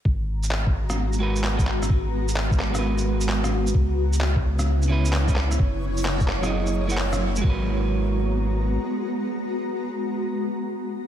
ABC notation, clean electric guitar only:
X:1
M:4/4
L:1/16
Q:"Swing 16ths" 1/4=130
K:G#m
V:1 name="Clean electric guitar"
z8 z2 [G,FAB]3 [G,FAB] z2 | z6 z [G,FAB]8- [G,FAB] | z8 z2 [C,CEB]3 [C,CEB] z2 | z6 z [F,EGAd]4 [F,EGAf] z4 |
[G,FAB]16- | [G,FAB]16 |]